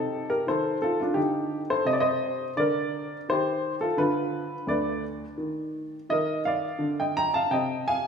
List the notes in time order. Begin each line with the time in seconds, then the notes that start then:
Already playing: C3 D#4 A4
0.29 G4 A#4
0.47 D#3 A4 C5
0.82 F4 A4
1.00 D4 F4
1.14 D3 D#4 G4
1.70 A4 C5
1.85 C3 D#5
1.93 D5
2.00 C5 D#5
2.57 D3 A#4 D5
3.29 D#3 G4 C5
3.81 F4 A4
3.97 D3 F4 B4
4.67 D2 B4 D5
5.38 D#3
6.09 D#3 A#4 D#5
6.45 D5 F5
6.79 D3
7.00 D#5 G5
7.17 G5 A#5
7.34 F5 A5
7.51 C3 D#5 G5
7.88 F5 G#5